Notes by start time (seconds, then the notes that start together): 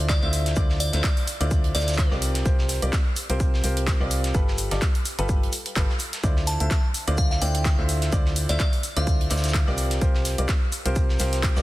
Already playing: D2 D3 E4 F4 C5 D5
0.09 D5, kick, snare, clap, closed hi-hat, shaker
0.23 D2 D3 E4 F4 C5 D5 E5
0.33 open hi-hat, shaker
0.46 snare, closed hi-hat, shaker
0.56 D2 D3 E4 F4 C5 D5, kick, closed hi-hat, shaker
0.70 snare
0.80 D5, open hi-hat, shaker
0.93 D2 D3 E4 F4 C5 D5 E5, snare, closed hi-hat, shaker
1.04 kick, snare, clap, closed hi-hat, shaker
1.17 open hi-hat
1.27 open hi-hat, shaker
1.41 D2 D3 E4 F4 C5 D5, closed hi-hat, shaker
1.51 kick, closed hi-hat, shaker
1.64 closed hi-hat
1.75 D2 D3 E4 F4 C5 D5, snare, open hi-hat, shaker
1.81 snare, shaker
1.88 snare, closed hi-hat, shaker
1.93 snare, shaker
1.98 kick, snare, clap, closed hi-hat, shaker
2.11 C2 C4 F4 G4 A#4 D5, snare
2.22 open hi-hat, shaker
2.35 snare, closed hi-hat, shaker
2.46 C2 C4 F4 G4 A#4 C5, kick, closed hi-hat, shaker
2.59 snare
2.69 snare, open hi-hat, shaker
2.82 C2 C4 F4 G4 A#4 D5, closed hi-hat, shaker
2.93 kick, snare, clap, closed hi-hat, shaker
3.16 open hi-hat, shaker
3.30 C2 C4 F4 G4 A#4 C5, closed hi-hat, shaker
3.40 kick, closed hi-hat, shaker
3.54 snare
3.64 C2 C4 F4 G4 A#4 C5, open hi-hat, shaker
3.77 closed hi-hat, shaker
3.87 kick, snare, clap, closed hi-hat, shaker
4.00 C2 C4 F4 G4 A#4 D5
4.11 open hi-hat, shaker
4.24 snare, closed hi-hat, shaker
4.35 G1 G3 F4 G4 A4 B4, kick, closed hi-hat, shaker
4.48 snare
4.58 open hi-hat, shaker
4.71 G1 G3 F4 G4 A4 D5, snare, closed hi-hat, shaker
4.81 kick, snare, clap, closed hi-hat, shaker
4.95 open hi-hat
5.05 open hi-hat, shaker
5.19 G1 G3 F4 G4 A4 B4, closed hi-hat, shaker
5.29 kick, closed hi-hat, shaker
5.43 closed hi-hat
5.52 open hi-hat, shaker
5.66 closed hi-hat, shaker
5.76 G1 G3 F4 G4 A4 B4, kick, snare, clap, closed hi-hat, shaker
5.90 snare
5.99 open hi-hat, shaker
6.13 snare, closed hi-hat, shaker
6.23 D2 D3 E4 F4 C5 D5, kick, closed hi-hat, shaker
6.37 snare
6.47 A5, snare, open hi-hat, shaker
6.60 D2 D3 E4 F4 C5 E5 A5, closed hi-hat, shaker
6.71 kick, snare, clap, closed hi-hat, shaker
6.94 open hi-hat, shaker
7.08 D2 D3 E4 F4 C5 D5, closed hi-hat, shaker
7.18 F5, kick, closed hi-hat, shaker
7.31 F5, snare
7.42 D2 D3 E4 F4 C5 D5 G5, open hi-hat, shaker
7.55 G5, closed hi-hat, shaker
7.65 kick, snare, clap, closed hi-hat, shaker
7.78 D2 D3 E4 F4 C5 E5
7.89 open hi-hat, shaker
8.02 snare, closed hi-hat, shaker
8.12 D2 D3 E4 F4 C5 D5, kick, closed hi-hat, shaker
8.26 snare
8.36 open hi-hat, shaker
8.49 D2 D3 E4 F4 C5 D5 E5, snare, closed hi-hat, shaker
8.59 D5, kick, snare, clap, closed hi-hat, shaker
8.73 open hi-hat
8.83 open hi-hat, shaker
8.97 D2 D3 E4 F4 C5 D5 F5, closed hi-hat, shaker
9.07 kick, closed hi-hat, shaker
9.21 closed hi-hat
9.30 D2 D3 E4 F4 C5 D5, snare, open hi-hat, shaker
9.37 snare, shaker
9.44 snare, closed hi-hat, shaker
9.48 snare, shaker
9.54 kick, snare, clap, closed hi-hat, shaker
9.67 C2 C4 F4 G4 A#4 D5, snare
9.77 open hi-hat, shaker
9.90 snare, closed hi-hat, shaker
10.01 C2 C4 F4 G4 A#4 C5, kick, closed hi-hat, shaker
10.15 snare
10.25 snare, open hi-hat, shaker
10.38 C2 C4 F4 G4 A#4 D5, closed hi-hat, shaker
10.48 kick, snare, clap, closed hi-hat, shaker
10.72 open hi-hat, shaker
10.86 C2 C4 F4 G4 A#4 C5, closed hi-hat, shaker
10.96 kick, closed hi-hat, shaker
11.09 snare
11.19 C2 C4 F4 G4 A#4 C5, snare, open hi-hat, shaker
11.33 snare, closed hi-hat, shaker
11.43 kick, clap, closed hi-hat, shaker
11.56 C2 C4 F4 G4 A#4 D5, snare, shaker